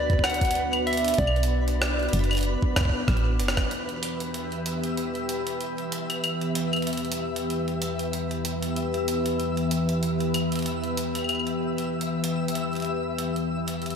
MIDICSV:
0, 0, Header, 1, 6, 480
1, 0, Start_track
1, 0, Key_signature, 1, "minor"
1, 0, Tempo, 631579
1, 901, Time_signature, 4, 2, 24, 8
1, 10607, End_track
2, 0, Start_track
2, 0, Title_t, "Soft synth lead"
2, 0, Program_c, 0, 80
2, 0, Note_on_c, 0, 74, 111
2, 181, Note_on_c, 0, 78, 115
2, 192, Note_off_c, 0, 74, 0
2, 660, Note_on_c, 0, 76, 108
2, 671, Note_off_c, 0, 78, 0
2, 897, Note_off_c, 0, 76, 0
2, 901, Note_on_c, 0, 74, 115
2, 2310, Note_off_c, 0, 74, 0
2, 10607, End_track
3, 0, Start_track
3, 0, Title_t, "Synth texture"
3, 0, Program_c, 1, 99
3, 0, Note_on_c, 1, 71, 80
3, 2820, Note_on_c, 1, 76, 80
3, 2832, Note_off_c, 1, 71, 0
3, 10607, Note_off_c, 1, 76, 0
3, 10607, End_track
4, 0, Start_track
4, 0, Title_t, "Ambient pad"
4, 0, Program_c, 2, 92
4, 0, Note_on_c, 2, 59, 78
4, 0, Note_on_c, 2, 62, 73
4, 0, Note_on_c, 2, 66, 89
4, 2790, Note_off_c, 2, 59, 0
4, 2790, Note_off_c, 2, 62, 0
4, 2790, Note_off_c, 2, 66, 0
4, 2820, Note_on_c, 2, 67, 72
4, 2821, Note_on_c, 2, 40, 77
4, 2821, Note_on_c, 2, 52, 69
4, 2821, Note_on_c, 2, 59, 71
4, 2821, Note_on_c, 2, 71, 89
4, 10470, Note_off_c, 2, 40, 0
4, 10470, Note_off_c, 2, 52, 0
4, 10470, Note_off_c, 2, 59, 0
4, 10470, Note_off_c, 2, 67, 0
4, 10470, Note_off_c, 2, 71, 0
4, 10607, End_track
5, 0, Start_track
5, 0, Title_t, "FM bass"
5, 0, Program_c, 3, 39
5, 0, Note_on_c, 3, 38, 91
5, 864, Note_off_c, 3, 38, 0
5, 900, Note_on_c, 3, 35, 95
5, 1584, Note_off_c, 3, 35, 0
5, 1620, Note_on_c, 3, 30, 86
5, 1949, Note_off_c, 3, 30, 0
5, 2341, Note_on_c, 3, 33, 88
5, 2581, Note_on_c, 3, 30, 85
5, 2592, Note_off_c, 3, 33, 0
5, 2775, Note_off_c, 3, 30, 0
5, 10607, End_track
6, 0, Start_track
6, 0, Title_t, "Drums"
6, 75, Note_on_c, 9, 36, 94
6, 75, Note_on_c, 9, 42, 26
6, 100, Note_off_c, 9, 36, 0
6, 100, Note_on_c, 9, 36, 76
6, 145, Note_off_c, 9, 36, 0
6, 145, Note_on_c, 9, 36, 65
6, 151, Note_off_c, 9, 42, 0
6, 181, Note_on_c, 9, 37, 106
6, 181, Note_on_c, 9, 42, 40
6, 181, Note_on_c, 9, 75, 51
6, 221, Note_off_c, 9, 36, 0
6, 225, Note_off_c, 9, 42, 0
6, 225, Note_on_c, 9, 42, 47
6, 257, Note_off_c, 9, 37, 0
6, 257, Note_off_c, 9, 75, 0
6, 261, Note_off_c, 9, 42, 0
6, 261, Note_on_c, 9, 42, 53
6, 315, Note_off_c, 9, 42, 0
6, 315, Note_on_c, 9, 36, 106
6, 315, Note_on_c, 9, 42, 61
6, 340, Note_off_c, 9, 42, 0
6, 340, Note_on_c, 9, 42, 67
6, 385, Note_off_c, 9, 42, 0
6, 385, Note_on_c, 9, 42, 75
6, 391, Note_off_c, 9, 36, 0
6, 421, Note_off_c, 9, 42, 0
6, 421, Note_on_c, 9, 42, 52
6, 497, Note_off_c, 9, 42, 0
6, 555, Note_on_c, 9, 42, 25
6, 555, Note_on_c, 9, 75, 64
6, 631, Note_off_c, 9, 42, 0
6, 631, Note_off_c, 9, 75, 0
6, 661, Note_on_c, 9, 42, 41
6, 705, Note_off_c, 9, 42, 0
6, 705, Note_on_c, 9, 42, 49
6, 740, Note_off_c, 9, 42, 0
6, 740, Note_on_c, 9, 42, 58
6, 794, Note_off_c, 9, 42, 0
6, 794, Note_on_c, 9, 42, 63
6, 820, Note_off_c, 9, 42, 0
6, 820, Note_on_c, 9, 42, 74
6, 865, Note_off_c, 9, 42, 0
6, 865, Note_on_c, 9, 42, 75
6, 900, Note_off_c, 9, 42, 0
6, 900, Note_on_c, 9, 36, 82
6, 900, Note_on_c, 9, 42, 55
6, 968, Note_on_c, 9, 75, 62
6, 976, Note_off_c, 9, 36, 0
6, 976, Note_off_c, 9, 42, 0
6, 1035, Note_on_c, 9, 42, 25
6, 1044, Note_off_c, 9, 75, 0
6, 1088, Note_off_c, 9, 42, 0
6, 1088, Note_on_c, 9, 42, 88
6, 1164, Note_off_c, 9, 42, 0
6, 1275, Note_on_c, 9, 42, 55
6, 1351, Note_off_c, 9, 42, 0
6, 1380, Note_on_c, 9, 37, 115
6, 1380, Note_on_c, 9, 42, 54
6, 1456, Note_off_c, 9, 37, 0
6, 1456, Note_off_c, 9, 42, 0
6, 1515, Note_on_c, 9, 42, 12
6, 1540, Note_off_c, 9, 42, 0
6, 1540, Note_on_c, 9, 42, 14
6, 1585, Note_off_c, 9, 42, 0
6, 1585, Note_on_c, 9, 42, 17
6, 1620, Note_off_c, 9, 42, 0
6, 1620, Note_on_c, 9, 42, 95
6, 1666, Note_off_c, 9, 42, 0
6, 1666, Note_on_c, 9, 42, 22
6, 1700, Note_off_c, 9, 42, 0
6, 1700, Note_on_c, 9, 42, 24
6, 1755, Note_off_c, 9, 42, 0
6, 1755, Note_on_c, 9, 42, 24
6, 1755, Note_on_c, 9, 75, 64
6, 1770, Note_off_c, 9, 42, 0
6, 1770, Note_on_c, 9, 42, 28
6, 1785, Note_off_c, 9, 42, 0
6, 1785, Note_on_c, 9, 42, 32
6, 1800, Note_off_c, 9, 42, 0
6, 1800, Note_on_c, 9, 42, 37
6, 1808, Note_off_c, 9, 42, 0
6, 1808, Note_on_c, 9, 42, 52
6, 1815, Note_off_c, 9, 42, 0
6, 1815, Note_on_c, 9, 42, 39
6, 1830, Note_off_c, 9, 42, 0
6, 1830, Note_on_c, 9, 42, 42
6, 1831, Note_off_c, 9, 75, 0
6, 1845, Note_off_c, 9, 42, 0
6, 1845, Note_on_c, 9, 42, 45
6, 1921, Note_off_c, 9, 42, 0
6, 1995, Note_on_c, 9, 36, 98
6, 2071, Note_off_c, 9, 36, 0
6, 2100, Note_on_c, 9, 36, 109
6, 2100, Note_on_c, 9, 37, 113
6, 2100, Note_on_c, 9, 42, 92
6, 2134, Note_off_c, 9, 36, 0
6, 2134, Note_on_c, 9, 36, 92
6, 2168, Note_off_c, 9, 36, 0
6, 2168, Note_on_c, 9, 36, 74
6, 2176, Note_off_c, 9, 37, 0
6, 2176, Note_off_c, 9, 42, 0
6, 2201, Note_off_c, 9, 36, 0
6, 2201, Note_on_c, 9, 36, 59
6, 2277, Note_off_c, 9, 36, 0
6, 2340, Note_on_c, 9, 36, 120
6, 2340, Note_on_c, 9, 37, 62
6, 2340, Note_on_c, 9, 42, 55
6, 2408, Note_off_c, 9, 42, 0
6, 2408, Note_on_c, 9, 42, 28
6, 2416, Note_off_c, 9, 36, 0
6, 2416, Note_off_c, 9, 37, 0
6, 2484, Note_off_c, 9, 42, 0
6, 2581, Note_on_c, 9, 42, 92
6, 2648, Note_on_c, 9, 37, 84
6, 2657, Note_off_c, 9, 42, 0
6, 2715, Note_off_c, 9, 37, 0
6, 2715, Note_on_c, 9, 36, 117
6, 2715, Note_on_c, 9, 37, 86
6, 2715, Note_on_c, 9, 42, 53
6, 2791, Note_off_c, 9, 36, 0
6, 2791, Note_off_c, 9, 37, 0
6, 2791, Note_off_c, 9, 42, 0
6, 2821, Note_on_c, 9, 42, 50
6, 2897, Note_off_c, 9, 42, 0
6, 2955, Note_on_c, 9, 42, 25
6, 3031, Note_off_c, 9, 42, 0
6, 3061, Note_on_c, 9, 42, 96
6, 3137, Note_off_c, 9, 42, 0
6, 3195, Note_on_c, 9, 42, 49
6, 3271, Note_off_c, 9, 42, 0
6, 3301, Note_on_c, 9, 42, 52
6, 3377, Note_off_c, 9, 42, 0
6, 3435, Note_on_c, 9, 42, 27
6, 3511, Note_off_c, 9, 42, 0
6, 3540, Note_on_c, 9, 42, 93
6, 3616, Note_off_c, 9, 42, 0
6, 3675, Note_on_c, 9, 42, 54
6, 3751, Note_off_c, 9, 42, 0
6, 3781, Note_on_c, 9, 42, 50
6, 3857, Note_off_c, 9, 42, 0
6, 3915, Note_on_c, 9, 42, 26
6, 3991, Note_off_c, 9, 42, 0
6, 4020, Note_on_c, 9, 42, 88
6, 4096, Note_off_c, 9, 42, 0
6, 4155, Note_on_c, 9, 42, 49
6, 4231, Note_off_c, 9, 42, 0
6, 4260, Note_on_c, 9, 42, 53
6, 4336, Note_off_c, 9, 42, 0
6, 4395, Note_on_c, 9, 42, 25
6, 4471, Note_off_c, 9, 42, 0
6, 4500, Note_on_c, 9, 42, 94
6, 4576, Note_off_c, 9, 42, 0
6, 4635, Note_on_c, 9, 42, 52
6, 4635, Note_on_c, 9, 75, 37
6, 4711, Note_off_c, 9, 42, 0
6, 4711, Note_off_c, 9, 75, 0
6, 4740, Note_on_c, 9, 42, 53
6, 4740, Note_on_c, 9, 75, 61
6, 4816, Note_off_c, 9, 42, 0
6, 4816, Note_off_c, 9, 75, 0
6, 4875, Note_on_c, 9, 42, 25
6, 4951, Note_off_c, 9, 42, 0
6, 4981, Note_on_c, 9, 42, 99
6, 5057, Note_off_c, 9, 42, 0
6, 5115, Note_on_c, 9, 42, 23
6, 5115, Note_on_c, 9, 75, 58
6, 5141, Note_off_c, 9, 42, 0
6, 5141, Note_on_c, 9, 42, 28
6, 5186, Note_off_c, 9, 42, 0
6, 5186, Note_on_c, 9, 42, 32
6, 5191, Note_off_c, 9, 75, 0
6, 5221, Note_off_c, 9, 42, 0
6, 5221, Note_on_c, 9, 42, 55
6, 5266, Note_off_c, 9, 42, 0
6, 5266, Note_on_c, 9, 42, 41
6, 5301, Note_off_c, 9, 42, 0
6, 5301, Note_on_c, 9, 42, 43
6, 5355, Note_off_c, 9, 42, 0
6, 5355, Note_on_c, 9, 42, 27
6, 5408, Note_off_c, 9, 42, 0
6, 5408, Note_on_c, 9, 42, 96
6, 5484, Note_off_c, 9, 42, 0
6, 5595, Note_on_c, 9, 42, 51
6, 5671, Note_off_c, 9, 42, 0
6, 5701, Note_on_c, 9, 42, 52
6, 5777, Note_off_c, 9, 42, 0
6, 5836, Note_on_c, 9, 42, 26
6, 5912, Note_off_c, 9, 42, 0
6, 5941, Note_on_c, 9, 42, 86
6, 6017, Note_off_c, 9, 42, 0
6, 6075, Note_on_c, 9, 42, 49
6, 6151, Note_off_c, 9, 42, 0
6, 6181, Note_on_c, 9, 42, 55
6, 6257, Note_off_c, 9, 42, 0
6, 6315, Note_on_c, 9, 42, 27
6, 6391, Note_off_c, 9, 42, 0
6, 6421, Note_on_c, 9, 42, 97
6, 6497, Note_off_c, 9, 42, 0
6, 6555, Note_on_c, 9, 42, 52
6, 6631, Note_off_c, 9, 42, 0
6, 6661, Note_on_c, 9, 42, 51
6, 6737, Note_off_c, 9, 42, 0
6, 6795, Note_on_c, 9, 42, 25
6, 6871, Note_off_c, 9, 42, 0
6, 6901, Note_on_c, 9, 42, 96
6, 6977, Note_off_c, 9, 42, 0
6, 7035, Note_on_c, 9, 42, 51
6, 7111, Note_off_c, 9, 42, 0
6, 7141, Note_on_c, 9, 42, 50
6, 7217, Note_off_c, 9, 42, 0
6, 7275, Note_on_c, 9, 42, 26
6, 7351, Note_off_c, 9, 42, 0
6, 7381, Note_on_c, 9, 42, 90
6, 7457, Note_off_c, 9, 42, 0
6, 7515, Note_on_c, 9, 42, 50
6, 7591, Note_off_c, 9, 42, 0
6, 7621, Note_on_c, 9, 42, 51
6, 7697, Note_off_c, 9, 42, 0
6, 7755, Note_on_c, 9, 42, 26
6, 7831, Note_off_c, 9, 42, 0
6, 7861, Note_on_c, 9, 42, 87
6, 7861, Note_on_c, 9, 75, 46
6, 7937, Note_off_c, 9, 42, 0
6, 7937, Note_off_c, 9, 75, 0
6, 7995, Note_on_c, 9, 42, 48
6, 8022, Note_off_c, 9, 42, 0
6, 8022, Note_on_c, 9, 42, 38
6, 8048, Note_off_c, 9, 42, 0
6, 8048, Note_on_c, 9, 42, 31
6, 8074, Note_off_c, 9, 42, 0
6, 8074, Note_on_c, 9, 42, 26
6, 8101, Note_off_c, 9, 42, 0
6, 8101, Note_on_c, 9, 42, 51
6, 8177, Note_off_c, 9, 42, 0
6, 8235, Note_on_c, 9, 42, 26
6, 8311, Note_off_c, 9, 42, 0
6, 8341, Note_on_c, 9, 42, 91
6, 8417, Note_off_c, 9, 42, 0
6, 8475, Note_on_c, 9, 42, 52
6, 8475, Note_on_c, 9, 75, 15
6, 8501, Note_off_c, 9, 75, 0
6, 8501, Note_on_c, 9, 75, 18
6, 8545, Note_off_c, 9, 75, 0
6, 8545, Note_on_c, 9, 75, 21
6, 8551, Note_off_c, 9, 42, 0
6, 8581, Note_off_c, 9, 75, 0
6, 8581, Note_on_c, 9, 42, 50
6, 8581, Note_on_c, 9, 75, 54
6, 8625, Note_off_c, 9, 75, 0
6, 8625, Note_on_c, 9, 75, 27
6, 8657, Note_off_c, 9, 42, 0
6, 8661, Note_off_c, 9, 75, 0
6, 8661, Note_on_c, 9, 75, 30
6, 8715, Note_on_c, 9, 42, 23
6, 8737, Note_off_c, 9, 75, 0
6, 8791, Note_off_c, 9, 42, 0
6, 8955, Note_on_c, 9, 42, 50
6, 9031, Note_off_c, 9, 42, 0
6, 9128, Note_on_c, 9, 42, 51
6, 9204, Note_off_c, 9, 42, 0
6, 9301, Note_on_c, 9, 42, 89
6, 9377, Note_off_c, 9, 42, 0
6, 9488, Note_on_c, 9, 42, 48
6, 9541, Note_off_c, 9, 42, 0
6, 9541, Note_on_c, 9, 42, 49
6, 9617, Note_off_c, 9, 42, 0
6, 9675, Note_on_c, 9, 42, 11
6, 9693, Note_off_c, 9, 42, 0
6, 9693, Note_on_c, 9, 42, 13
6, 9701, Note_off_c, 9, 42, 0
6, 9701, Note_on_c, 9, 42, 15
6, 9728, Note_off_c, 9, 42, 0
6, 9728, Note_on_c, 9, 42, 17
6, 9745, Note_off_c, 9, 42, 0
6, 9745, Note_on_c, 9, 42, 19
6, 9763, Note_off_c, 9, 42, 0
6, 9763, Note_on_c, 9, 42, 22
6, 9839, Note_off_c, 9, 42, 0
6, 10020, Note_on_c, 9, 42, 51
6, 10096, Note_off_c, 9, 42, 0
6, 10155, Note_on_c, 9, 42, 24
6, 10231, Note_off_c, 9, 42, 0
6, 10395, Note_on_c, 9, 42, 51
6, 10471, Note_off_c, 9, 42, 0
6, 10501, Note_on_c, 9, 42, 21
6, 10534, Note_off_c, 9, 42, 0
6, 10534, Note_on_c, 9, 42, 25
6, 10567, Note_off_c, 9, 42, 0
6, 10567, Note_on_c, 9, 42, 28
6, 10607, Note_off_c, 9, 42, 0
6, 10607, End_track
0, 0, End_of_file